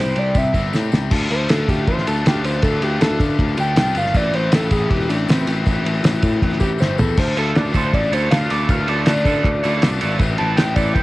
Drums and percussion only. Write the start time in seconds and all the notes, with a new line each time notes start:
0.15 ride, tambourine
0.35 kick, ride, tambourine
0.54 kick, ride, tambourine
0.73 snare, tambourine
0.92 snare, tambourine
1.11 kick, crash, tambourine
1.30 ride, tambourine
1.49 snare, ride, tambourine
1.68 kick, ride, tambourine
1.78 tambourine
1.87 kick, ride, tambourine
1.98 snare, tambourine
2.07 ride, tambourine
2.17 tambourine
2.26 snare, ride, tambourine
2.44 ride, tambourine
2.55 tambourine
2.62 kick, ride, tambourine
2.82 ride, tambourine
3.01 snare, ride, tambourine
3.20 kick, ride, tambourine
3.29 tambourine
3.39 kick, ride, tambourine
3.48 tambourine
3.57 ride, tambourine
3.67 tambourine
3.76 snare, ride, tambourine
3.95 ride, tambourine
4.06 snare
4.14 kick, ride, tambourine
4.33 ride, tambourine
4.52 snare, ride, tambourine
4.71 kick, ride, tambourine
4.81 tambourine
4.91 kick, ride, tambourine
5.00 tambourine
5.09 ride, tambourine
5.19 tambourine
5.28 snare, ride, tambourine
5.47 ride, tambourine
5.57 tambourine
5.65 kick, ride, tambourine
5.75 tambourine
5.85 ride, tambourine
5.94 tambourine
6.04 snare, ride, tambourine
6.22 kick, ride, tambourine
6.33 tambourine
6.42 kick, ride, tambourine
6.51 snare, tambourine
6.60 kick, ride, tambourine
6.78 snare, tambourine
6.98 floor tom, tambourine
7.17 kick, crash, tambourine
7.37 ride, tambourine
7.55 snare, ride, tambourine
7.74 kick, ride, tambourine
7.84 tambourine
7.94 kick, ride, tambourine
8.03 tambourine
8.13 ride, tambourine
8.22 tambourine
8.31 snare, ride, tambourine
8.50 ride, tambourine
8.69 kick, ride, tambourine
8.88 ride, tambourine
9.06 snare, ride, tambourine
9.25 kick, ride, tambourine
9.45 kick, ride, tambourine
9.55 tambourine
9.64 ride, tambourine
9.82 snare, ride, tambourine
10.01 ride, tambourine
10.12 tambourine
10.19 kick, ride, tambourine
10.38 ride, tambourine
10.57 snare, ride, tambourine
10.76 kick, ride, tambourine
10.95 kick, ride, tambourine